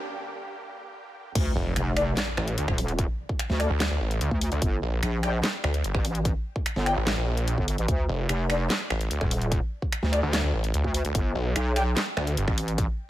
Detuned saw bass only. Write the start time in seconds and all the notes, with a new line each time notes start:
1.56 F1
2.37 A1
2.58 D2
3.70 D2
3.90 D2
4.01 A1
4.21 D2
4.52 D2
4.82 A#1
5.64 D2
5.84 G1
6.96 A1
7.17 A#1
8.09 F1
8.90 A1
9.11 D2
10.23 D2
10.44 D2
10.54 A1
10.74 D2
11.05 D2
11.35 B1
12.17 D2
12.37 G1